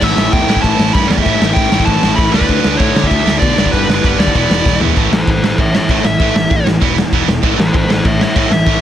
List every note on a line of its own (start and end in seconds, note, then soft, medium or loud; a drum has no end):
0.01 0.12 A1 medium
0.01 0.47 A2 medium
0.01 0.47 E3 medium
0.01 0.48 A3 medium
0.01 0.47 C#4 loud
0.01 0.46 E4 medium
0.01 0.34 E5 loud
0.01 kick loud
0.01 crash loud
0.17 0.28 A1 medium
0.17 snare loud
0.33 0.43 E2 loud
0.33 0.61 G5 medium
0.33 kick loud
0.33 ride medium
0.47 0.58 A2 loud
0.47 0.93 A2 medium
0.47 0.94 E3 medium
0.47 0.95 A3 medium
0.47 0.94 C#4 medium
0.47 0.93 E4 medium
0.47 snare loud
0.56 kick medium
0.62 0.74 A1 loud
0.62 0.95 A5 loud
0.62 kick loud
0.62 ride medium
0.79 0.89 A1 medium
0.79 snare loud
0.93 1.05 G2 medium
0.93 1.24 A2 medium
0.93 1.25 E3 medium
0.93 1.27 A3 medium
0.93 1.26 C#4 loud
0.93 1.26 E4 loud
0.93 1.10 B5 loud
0.93 kick loud
0.93 ride medium
1.08 1.20 E2 loud
1.08 1.13 D5 medium
1.08 snare loud
1.18 kick medium
1.22 1.36 A1 medium
1.22 1.71 A2 medium
1.22 1.53 E5 loud
1.22 kick medium
1.22 ride medium
1.27 1.72 E3 loud
1.27 1.72 A3 loud
1.27 1.72 C#4 medium
1.27 1.71 E4 loud
1.42 1.52 A1 medium
1.42 snare loud
1.53 1.67 A1 medium
1.53 1.85 G5 medium
1.53 kick loud
1.53 ride medium
1.72 1.82 A1 loud
1.72 2.16 A2 medium
1.72 2.16 E3 medium
1.72 2.17 A3 medium
1.72 2.18 C#4 medium
1.72 2.17 E4 medium
1.72 snare loud
1.80 kick medium
1.85 1.97 A1 loud
1.85 2.18 A5 loud
1.85 kick loud
1.85 ride medium
2.03 2.14 A1 medium
2.03 snare loud
2.15 2.29 A1 loud
2.15 2.32 A2 medium
2.15 2.32 E3 medium
2.15 2.33 A3 medium
2.15 2.33 C#4 medium
2.15 2.33 B5 loud
2.15 kick loud
2.15 ride medium
2.20 2.34 E4 loud
2.32 2.44 D2 loud
2.32 2.77 D3 medium
2.32 2.78 F#3 loud
2.32 2.79 A3 loud
2.32 2.81 D4 medium
2.32 2.81 B4 loud
2.32 snare loud
2.41 kick medium
2.48 2.59 D2 medium
2.48 kick loud
2.48 ride medium
2.64 2.75 D2 medium
2.64 snare loud
2.77 2.90 A2 medium
2.77 3.25 D3 medium
2.77 3.25 F#3 medium
2.77 3.26 A3 medium
2.77 3.06 C#5 medium
2.77 kick loud
2.77 ride medium
2.81 3.24 D4 loud
2.96 3.06 D3 loud
2.96 snare loud
3.03 3.39 E5 loud
3.03 kick medium
3.11 3.21 D2 loud
3.11 kick medium
3.11 ride medium
3.26 3.37 D2 medium
3.26 3.58 D3 medium
3.26 3.58 F#3 medium
3.26 3.57 A3 medium
3.26 3.56 D4 loud
3.26 snare loud
3.39 3.52 B2 loud
3.39 3.69 D5 loud
3.39 kick loud
3.39 ride medium
3.58 3.68 G1 medium
3.58 4.03 G2 medium
3.58 4.03 D3 medium
3.58 4.04 G3 loud
3.58 4.04 B3 loud
3.58 4.04 D4 loud
3.58 snare loud
3.65 kick medium
3.72 3.83 G1 medium
3.72 3.94 B4 medium
3.72 kick loud
3.72 ride medium
3.88 3.99 G1 medium
3.88 snare loud
3.95 4.19 B4 medium
4.04 4.14 G1 medium
4.04 4.34 G2 medium
4.04 4.34 D3 medium
4.04 4.35 G3 medium
4.04 4.35 B3 medium
4.04 4.35 D4 loud
4.04 kick loud
4.04 ride medium
4.18 4.29 D#2 loud
4.18 4.35 D5 medium
4.18 snare loud
4.27 kick medium
4.34 4.45 E1 loud
4.34 4.80 E2 medium
4.34 4.81 B2 medium
4.34 4.80 E3 loud
4.34 4.81 G#3 medium
4.34 4.81 B3 loud
4.34 4.80 E4 loud
4.34 4.79 D5 medium
4.34 kick loud
4.34 ride medium
4.38 4.80 E3 loud
4.51 4.61 E1 medium
4.51 snare loud
4.66 4.76 E1 medium
4.66 kick loud
4.66 snare medium
4.81 4.91 E2 loud
4.81 4.97 E2 medium
4.81 4.96 B2 medium
4.81 4.96 E3 medium
4.81 4.97 G#3 medium
4.81 4.97 B3 medium
4.81 4.96 E4 medium
4.81 floor tom loud
4.97 5.07 A1 medium
4.97 5.11 A2 medium
4.97 5.12 E3 loud
4.97 5.12 A3 medium
4.97 kick loud
4.97 crash medium
5.12 5.22 A1 medium
5.12 5.26 A2 medium
5.12 5.26 E3 medium
5.12 5.28 A4 medium
5.12 5.28 C5 medium
5.12 snare loud
5.27 5.37 A1 medium
5.27 5.42 A2 medium
5.27 5.42 E3 medium
5.27 5.43 A4 medium
5.27 5.44 C5 medium
5.27 kick loud
5.27 crash medium
5.43 5.53 A1 loud
5.43 5.57 A2 medium
5.43 5.58 E3 medium
5.43 5.59 A4 medium
5.43 snare loud
5.47 5.59 C5 medium
5.58 5.78 A1 loud
5.58 5.73 A2 medium
5.58 5.73 E3 medium
5.58 5.73 C#5 medium
5.58 5.75 E5 medium
5.58 kick loud
5.58 crash medium
5.75 5.88 A2 medium
5.75 5.88 E3 medium
5.75 5.89 C#5 medium
5.75 5.90 E5 medium
5.75 snare loud
5.89 5.99 A1 medium
5.89 6.04 A2 loud
5.89 6.05 E3 loud
5.89 6.05 A3 loud
5.89 6.05 C#5 medium
5.89 6.05 E5 medium
5.89 kick loud
5.89 crash medium
6.04 6.14 A1 medium
6.04 6.19 A2 medium
6.04 6.19 E3 medium
6.04 6.66 E5 loud
6.04 snare loud
6.20 6.30 A1 medium
6.20 6.34 A2 medium
6.20 6.34 E3 medium
6.20 6.35 A3 loud
6.20 kick loud
6.20 crash medium
6.35 6.45 A1 medium
6.35 6.49 A2 medium
6.35 6.50 E3 medium
6.35 snare loud
6.50 6.61 A1 medium
6.50 6.65 A2 medium
6.50 6.65 E3 medium
6.50 kick loud
6.50 crash medium
6.66 6.76 A1 medium
6.66 6.80 A2 medium
6.66 6.80 E3 medium
6.66 snare loud
6.81 7.02 E1 loud
6.81 6.96 E2 medium
6.81 6.96 B2 medium
6.81 6.96 E3 loud
6.81 6.96 B3 loud
6.81 6.97 E4 loud
6.81 kick loud
6.81 crash medium
6.97 7.11 E2 medium
6.97 7.11 B2 medium
6.97 7.11 E3 medium
6.97 7.11 B3 medium
6.97 snare loud
7.12 7.22 E1 medium
7.12 7.27 E2 medium
7.12 7.27 B2 medium
7.12 7.27 E3 medium
7.12 7.28 B3 loud
7.12 7.28 E4 loud
7.12 kick loud
7.12 crash medium
7.28 7.38 E1 medium
7.28 7.42 E2 medium
7.28 7.42 B2 medium
7.28 7.42 E3 medium
7.28 7.42 B3 medium
7.28 snare loud
7.42 7.53 A1 medium
7.42 7.56 A2 medium
7.42 7.57 E3 loud
7.42 7.58 A3 medium
7.42 kick loud
7.42 crash medium
7.57 7.68 A1 medium
7.57 7.72 A2 medium
7.57 7.72 E3 medium
7.57 7.74 A4 medium
7.57 7.75 C5 loud
7.57 snare loud
7.74 7.84 A1 medium
7.74 7.87 A2 medium
7.74 7.88 E3 medium
7.74 7.89 A4 medium
7.74 7.90 C5 medium
7.74 kick loud
7.74 crash medium
7.88 7.99 A1 loud
7.88 8.03 A2 medium
7.88 8.04 E3 medium
7.88 8.05 A4 medium
7.88 snare loud
7.93 8.06 C5 loud
8.05 8.25 A1 loud
8.05 8.19 A2 medium
8.05 8.20 E3 medium
8.05 8.21 C#5 medium
8.05 8.21 E5 medium
8.05 kick loud
8.05 crash medium
8.21 8.35 A2 medium
8.21 8.35 E3 medium
8.21 8.36 C#5 medium
8.21 8.36 E5 medium
8.21 snare loud
8.36 8.46 A1 medium
8.36 8.51 A2 loud
8.36 8.51 E3 loud
8.36 8.51 A3 loud
8.36 8.51 C#5 medium
8.36 8.51 E5 loud
8.36 kick loud
8.36 crash medium
8.51 8.61 A1 loud
8.51 8.65 A2 medium
8.51 8.66 E3 medium
8.51 8.81 E5 medium
8.51 snare loud
8.66 8.77 A1 medium
8.66 8.81 A2 medium
8.66 8.81 E3 medium
8.66 8.81 A3 loud
8.66 kick loud
8.66 crash medium